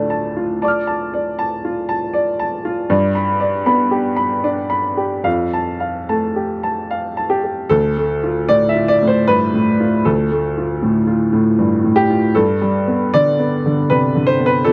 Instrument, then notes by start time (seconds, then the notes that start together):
upright piano
Already playing: D2 A2 A3 D4 F4 D5 A5
0.10 A5
0.36 F4
0.62 D5 A5 D6
0.68 F6
0.87 A5
1.14 D5
1.39 A5
1.65 F4
1.89 A5
2.14 D5
2.39 A5
2.65 F4
2.90 G2 D5
3.15 B5
3.40 D5
3.66 B3 B5
3.91 G4
4.16 B5
4.44 D4 D5
4.70 B5
4.97 G4
5.24 F2 F5
5.53 A5
5.80 F5
6.09 A3 A5
6.36 G4
6.63 A5
6.91 F5
7.17 A5
7.30 G4
7.44 G4
7.69 D2 A4
7.97 A3
8.23 F4
8.49 A2 D5
8.69 E5
8.75 F4
8.88 D5
9.02 A2
9.07 C5
9.28 G2 B4
9.54 A2
9.80 F4
10.05 D2 A4
10.31 A3
10.57 F4
10.82 A2
11.07 F4
11.33 A2
11.59 G2
11.84 A2
11.96 G4
12.10 F4
12.35 G2 A4
12.62 G3
12.88 B3
13.14 D3 D5
13.39 B3
13.66 D3
13.90 C3 B4
14.15 D3
14.27 C5
14.40 B3
14.46 B4
14.64 F2 A4